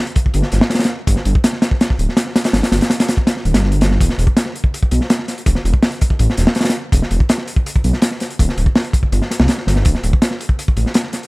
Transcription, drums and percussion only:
0.07 closed hi-hat
0.16 kick, closed hi-hat
0.26 kick
0.34 closed hi-hat
0.42 snare
0.52 snare, closed hi-hat
0.61 snare
0.70 snare, closed hi-hat
0.75 snare, closed hi-hat
0.79 snare, closed hi-hat
0.84 snare, closed hi-hat
1.07 kick, closed hi-hat
1.16 snare
1.25 closed hi-hat
1.35 kick
1.44 snare, closed hi-hat
1.53 snare
1.62 snare, closed hi-hat
1.71 kick
1.81 snare, closed hi-hat
1.90 kick
1.99 closed hi-hat
2.09 snare
2.17 snare, closed hi-hat
2.27 snare
2.36 snare, closed hi-hat
2.44 snare, closed hi-hat
2.53 snare, closed hi-hat
2.63 snare, closed hi-hat
2.72 snare, closed hi-hat
2.81 snare, closed hi-hat
2.90 snare, closed hi-hat
3.00 snare, closed hi-hat
3.08 snare, closed hi-hat
3.17 kick
3.27 snare, closed hi-hat
3.37 snare
3.45 closed hi-hat
3.54 snare, closed hi-hat
3.63 snare
3.72 closed hi-hat
3.81 snare, closed hi-hat
3.91 snare
4.01 kick, closed hi-hat
4.09 snare
4.19 closed hi-hat
4.27 kick
4.37 snare, closed hi-hat
4.46 snare
4.55 closed hi-hat
4.64 kick
4.74 closed hi-hat
4.83 kick
4.91 closed hi-hat
5.01 snare
5.10 snare, closed hi-hat
5.19 snare
5.28 snare, closed hi-hat
5.38 closed hi-hat
5.46 kick, closed hi-hat
5.55 snare
5.65 closed hi-hat
5.74 kick
5.83 snare, open hi-hat
5.92 closed hi-hat
6.01 kick, closed hi-hat
6.10 kick
6.19 closed hi-hat
6.30 snare
6.37 snare, closed hi-hat
6.47 snare
6.55 snare, closed hi-hat
6.61 snare, closed hi-hat
6.65 snare, closed hi-hat
6.69 snare, closed hi-hat
6.92 kick, closed hi-hat
7.02 snare
7.11 closed hi-hat
7.20 kick
7.29 snare, closed hi-hat
7.38 snare
7.47 closed hi-hat
7.56 kick
7.66 closed hi-hat
7.76 kick
7.84 closed hi-hat
7.93 snare
8.02 snare, closed hi-hat
8.11 snare
8.20 snare, closed hi-hat
8.30 closed hi-hat
8.39 kick, closed hi-hat
8.49 snare
8.57 closed hi-hat
8.66 kick
8.75 snare, open hi-hat
8.84 closed hi-hat
8.93 kick, closed hi-hat
9.03 kick
9.12 closed hi-hat
9.22 snare
9.31 snare, closed hi-hat
9.40 snare
9.48 snare, closed hi-hat
9.58 snare
9.67 snare, closed hi-hat
9.76 snare
9.85 kick, closed hi-hat
9.95 snare
10.03 closed hi-hat
10.13 kick
10.22 snare, closed hi-hat
10.31 snare
10.41 closed hi-hat
10.49 kick
10.59 closed hi-hat
10.68 kick
10.77 closed hi-hat
10.86 snare
10.94 snare, closed hi-hat
11.04 snare
11.13 snare, closed hi-hat
11.23 closed hi-hat

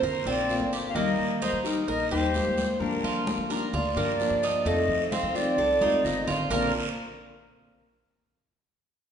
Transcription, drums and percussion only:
0.03 high conga, low conga, long guiro
0.26 high conga
0.49 high conga, short guiro
0.73 short guiro
0.96 high conga, long guiro
1.19 high conga
1.42 high conga, short guiro
1.65 high conga, short guiro
1.88 high conga, long guiro
2.12 high conga
2.34 high conga, short guiro
2.57 high conga, short guiro
2.80 high conga, long guiro
3.05 high conga
3.27 high conga, short guiro
3.50 short guiro
3.73 high conga, low conga, long guiro
3.97 high conga, low conga
4.20 high conga, short guiro
4.43 short guiro
4.66 high conga, long guiro
4.89 high conga
5.12 high conga, short guiro
5.36 high conga, short guiro
5.59 high conga, long guiro
5.81 high conga
6.05 low conga, short guiro
6.28 low conga, short guiro
6.51 low conga, long guiro

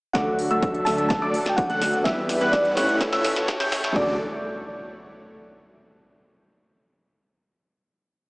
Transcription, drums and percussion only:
0.15 kick, snare, closed hi-hat
0.39 open hi-hat
0.51 closed hi-hat
0.63 kick, closed hi-hat
0.74 closed hi-hat
0.86 snare, open hi-hat
0.98 closed hi-hat
1.10 kick, snare, closed hi-hat
1.34 open hi-hat
1.46 snare, closed hi-hat
1.58 kick, closed hi-hat
1.70 closed hi-hat
1.82 snare, open hi-hat
1.93 closed hi-hat
2.05 kick, snare, closed hi-hat
2.29 snare, open hi-hat
2.41 closed hi-hat
2.53 kick, snare, closed hi-hat
2.65 closed hi-hat
2.77 snare, open hi-hat
2.89 closed hi-hat
3.01 kick, snare, closed hi-hat
3.13 snare
3.24 snare, open hi-hat
3.36 snare, closed hi-hat
3.48 kick, snare, closed hi-hat
3.60 snare, closed hi-hat
3.72 snare, open hi-hat
3.84 snare, closed hi-hat
3.96 kick

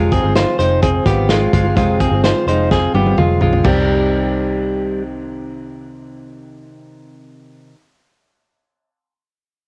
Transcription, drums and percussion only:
0.12 kick, closed hi-hat
0.35 snare, closed hi-hat
0.60 closed hi-hat
0.82 kick, closed hi-hat
1.05 kick, snare, closed hi-hat
1.29 snare, closed hi-hat
1.53 kick, closed hi-hat
1.77 kick, closed hi-hat
2.00 kick, closed hi-hat
2.24 snare, closed hi-hat
2.48 closed hi-hat
2.71 kick, snare
2.95 high tom
3.06 high tom
3.18 mid tom
3.41 floor tom
3.53 floor tom
3.64 kick, floor tom, crash

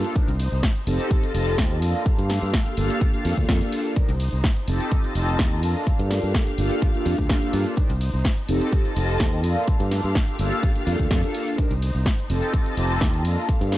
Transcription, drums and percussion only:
0.04 closed hi-hat
0.16 kick, closed hi-hat, ride
0.28 closed hi-hat
0.39 open hi-hat, ride
0.63 kick, snare, closed hi-hat, ride
0.76 closed hi-hat
0.87 open hi-hat, ride
1.00 closed hi-hat
1.11 kick, closed hi-hat, ride
1.24 closed hi-hat
1.35 open hi-hat, ride
1.58 kick, snare, closed hi-hat, ride
1.71 closed hi-hat
1.82 open hi-hat, ride
2.06 kick, closed hi-hat, ride
2.19 closed hi-hat
2.30 snare, open hi-hat, ride
2.54 kick, snare, closed hi-hat, ride
2.66 closed hi-hat
2.77 open hi-hat, ride
2.90 closed hi-hat
3.01 kick, closed hi-hat, ride
3.14 closed hi-hat
3.25 open hi-hat, ride
3.37 kick
3.49 kick, snare, closed hi-hat, ride
3.61 closed hi-hat
3.73 open hi-hat, ride
3.85 closed hi-hat
3.96 kick, closed hi-hat, ride
4.09 closed hi-hat
4.20 open hi-hat, ride
4.44 kick, snare, closed hi-hat, ride
4.56 closed hi-hat
4.68 open hi-hat, ride
4.80 closed hi-hat
4.91 kick, closed hi-hat, ride
5.04 closed hi-hat
5.15 open hi-hat, ride
5.39 kick, snare, closed hi-hat, ride
5.52 closed hi-hat
5.63 open hi-hat, ride
5.87 kick, closed hi-hat, ride
5.99 closed hi-hat
6.11 snare, open hi-hat, ride
6.34 kick, snare, closed hi-hat, ride
6.47 closed hi-hat
6.58 open hi-hat, ride
6.71 closed hi-hat
6.82 kick, closed hi-hat, ride
6.95 closed hi-hat
7.06 open hi-hat, ride
7.18 kick
7.29 kick, snare, closed hi-hat, ride
7.42 closed hi-hat
7.53 open hi-hat, ride
7.66 closed hi-hat
7.77 kick, closed hi-hat, ride
7.90 closed hi-hat
8.01 open hi-hat, ride
8.25 kick, snare, closed hi-hat, ride
8.38 closed hi-hat
8.49 open hi-hat, ride
8.61 closed hi-hat
8.72 kick, closed hi-hat, ride
8.85 closed hi-hat
8.96 open hi-hat, ride
9.20 kick, snare, closed hi-hat, ride
9.32 closed hi-hat
9.44 open hi-hat, ride
9.68 kick, closed hi-hat, ride
9.80 closed hi-hat
9.91 snare, open hi-hat, ride
10.15 kick, snare, closed hi-hat, ride
10.28 closed hi-hat
10.39 open hi-hat, ride
10.52 closed hi-hat
10.63 kick, closed hi-hat, ride
10.76 closed hi-hat
10.87 open hi-hat, ride
10.99 kick
11.11 kick, snare, closed hi-hat, ride
11.23 closed hi-hat
11.35 open hi-hat, ride
11.47 closed hi-hat
11.58 kick, closed hi-hat, ride
11.71 closed hi-hat
11.82 open hi-hat, ride
12.06 kick, snare, closed hi-hat, ride
12.19 closed hi-hat
12.30 open hi-hat, ride
12.42 closed hi-hat
12.53 kick, closed hi-hat, ride
12.66 closed hi-hat
12.77 open hi-hat, ride
13.01 kick, snare, closed hi-hat, ride
13.14 closed hi-hat
13.25 open hi-hat, ride
13.49 kick, closed hi-hat, ride
13.61 closed hi-hat
13.72 snare, open hi-hat, ride

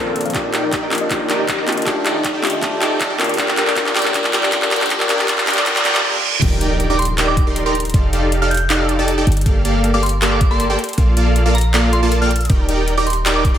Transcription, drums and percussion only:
0.16 closed hi-hat
0.21 closed hi-hat
0.26 closed hi-hat
0.30 closed hi-hat
0.34 kick, clap, closed hi-hat
0.54 clap, closed hi-hat
0.72 kick, clap, closed hi-hat
0.91 clap, closed hi-hat
0.95 closed hi-hat
0.98 closed hi-hat
1.10 kick, clap, closed hi-hat
1.30 clap, closed hi-hat
1.48 kick, clap, closed hi-hat
1.68 clap, closed hi-hat
1.73 closed hi-hat
1.77 closed hi-hat
1.82 closed hi-hat
1.86 kick, clap, closed hi-hat
2.06 clap, closed hi-hat
2.24 kick, clap, closed hi-hat
2.44 clap, closed hi-hat
2.47 closed hi-hat
2.50 closed hi-hat
2.62 kick, clap, closed hi-hat
2.82 clap, closed hi-hat
3.00 kick, clap, closed hi-hat
3.20 clap, closed hi-hat
3.24 closed hi-hat
3.29 closed hi-hat
3.34 closed hi-hat
3.38 kick, clap, closed hi-hat
3.48 clap
3.57 clap, closed hi-hat
3.67 clap
3.76 kick, clap, closed hi-hat
3.86 clap
3.96 clap, closed hi-hat
3.99 closed hi-hat
4.02 clap, closed hi-hat
4.14 kick, clap, closed hi-hat
4.24 clap
4.33 clap, closed hi-hat
4.43 clap
4.52 kick, clap, closed hi-hat
4.62 clap
4.71 clap, closed hi-hat
4.76 closed hi-hat
4.81 clap, closed hi-hat
4.86 closed hi-hat
4.90 kick, clap, closed hi-hat
5.00 clap
5.09 clap, closed hi-hat
5.19 clap
5.28 kick, clap, closed hi-hat
5.38 clap
5.47 clap, closed hi-hat
5.50 closed hi-hat
5.53 clap, closed hi-hat
5.66 kick, clap, closed hi-hat
5.76 clap
5.85 clap, closed hi-hat
5.95 clap
6.42 kick, closed hi-hat, crash
6.61 closed hi-hat
6.80 closed hi-hat
6.99 closed hi-hat
7.02 closed hi-hat
7.05 closed hi-hat
7.18 clap, closed hi-hat
7.37 kick, closed hi-hat
7.56 closed hi-hat
7.75 closed hi-hat
7.80 closed hi-hat
7.85 closed hi-hat
7.90 closed hi-hat
7.94 kick, closed hi-hat
8.13 closed hi-hat
8.32 closed hi-hat
8.51 closed hi-hat
8.54 closed hi-hat
8.57 closed hi-hat
8.70 clap, closed hi-hat
8.89 closed hi-hat
9.08 closed hi-hat
9.27 closed hi-hat
9.32 closed hi-hat
9.37 closed hi-hat
9.41 closed hi-hat
9.46 kick, closed hi-hat
9.65 closed hi-hat
9.84 closed hi-hat
10.03 closed hi-hat
10.06 closed hi-hat
10.09 closed hi-hat
10.22 clap, closed hi-hat
10.41 kick, closed hi-hat
10.60 closed hi-hat
10.79 closed hi-hat
10.84 closed hi-hat
10.89 closed hi-hat
10.93 closed hi-hat
10.98 kick, closed hi-hat
11.17 closed hi-hat
11.36 closed hi-hat
11.55 closed hi-hat
11.58 closed hi-hat
11.61 closed hi-hat
11.74 clap, closed hi-hat
11.93 closed hi-hat
12.12 closed hi-hat
12.31 closed hi-hat
12.36 closed hi-hat
12.41 closed hi-hat
12.45 closed hi-hat
12.50 kick, closed hi-hat
12.69 closed hi-hat
12.88 closed hi-hat
13.07 closed hi-hat
13.10 closed hi-hat
13.13 closed hi-hat
13.26 clap, closed hi-hat
13.45 kick, closed hi-hat

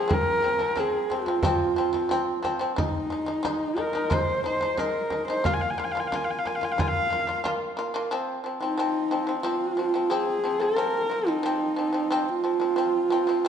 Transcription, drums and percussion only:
0.11 frame drum
0.77 frame drum
1.11 frame drum
1.26 frame drum
1.43 frame drum
1.94 frame drum
2.11 frame drum
2.44 frame drum
2.78 frame drum
3.45 frame drum
3.78 frame drum
3.96 frame drum
4.11 frame drum
4.61 frame drum
4.78 frame drum
5.11 frame drum
5.45 frame drum
6.13 frame drum
6.46 frame drum
6.62 frame drum
6.79 frame drum
7.29 frame drum
7.45 frame drum

